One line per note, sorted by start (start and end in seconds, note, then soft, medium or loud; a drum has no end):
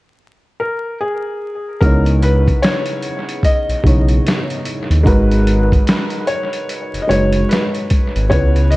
0.60 0.98 A#4 medium
1.00 1.84 G#4 medium
1.81 2.52 C#2 loud
1.81 3.04 C#3 medium
1.81 3.04 B3 medium
1.81 3.04 D#4 medium
1.81 3.05 E4 medium
1.81 2.23 A#4 medium
1.81 kick loud
1.81 closed hi-hat medium
1.85 3.05 C#5 medium
2.06 closed hi-hat soft
2.22 2.60 B4 medium
2.22 closed hi-hat medium
2.48 kick medium
2.48 closed hi-hat soft
2.62 3.40 C#5 medium
2.62 snare loud
2.62 closed hi-hat medium
2.86 closed hi-hat soft
3.02 closed hi-hat medium
3.29 closed hi-hat soft
3.43 4.62 D#5 medium
3.43 kick medium
3.43 closed hi-hat medium
3.69 3.75 B1 soft
3.69 closed hi-hat soft
3.83 4.20 B1 medium
3.83 4.77 C#3 medium
3.83 4.78 B3 medium
3.83 4.78 D#4 medium
3.83 4.79 E4 medium
3.83 4.79 C#5 medium
3.83 kick medium
3.83 closed hi-hat medium
4.08 closed hi-hat soft
4.26 snare loud
4.26 closed hi-hat medium
4.50 closed hi-hat soft
4.65 closed hi-hat medium
4.90 5.04 D#2 medium
4.90 closed hi-hat soft
5.03 5.77 G#1 medium
5.03 6.27 G#3 loud
5.03 6.27 D#4 medium
5.03 6.27 F#4 medium
5.03 6.28 A#4 medium
5.03 6.28 B4 loud
5.03 kick loud
5.03 closed hi-hat medium
5.31 closed hi-hat soft
5.47 closed hi-hat medium
5.72 kick medium
5.72 closed hi-hat soft
5.87 snare loud
5.87 closed hi-hat medium
6.10 closed hi-hat soft
6.27 6.99 C#5 medium
6.27 closed hi-hat medium
6.53 closed hi-hat soft
6.69 closed hi-hat medium
6.93 7.00 F#1 soft
6.93 closed hi-hat soft
7.02 7.08 D#5 medium
7.07 7.45 F#1 medium
7.07 8.01 G#3 medium
7.07 8.02 D#4 medium
7.07 8.03 F#4 medium
7.07 8.03 B4 medium
7.07 7.51 C#5 medium
7.07 8.03 C#5 medium
7.07 closed hi-hat medium
7.33 closed hi-hat soft
7.49 8.26 B4 medium
7.49 snare loud
7.49 closed hi-hat medium
7.74 closed hi-hat soft
7.90 kick medium
7.90 closed hi-hat medium
8.15 8.29 G#1 medium
8.15 closed hi-hat soft
8.29 8.77 C#2 loud
8.29 8.77 C#3 medium
8.29 8.77 B3 medium
8.29 8.77 C#4 medium
8.29 8.77 E4 medium
8.29 8.77 B4 medium
8.29 8.72 C#5 medium
8.29 kick loud
8.29 closed hi-hat medium
8.56 closed hi-hat soft
8.71 8.77 D#5 medium
8.71 closed hi-hat medium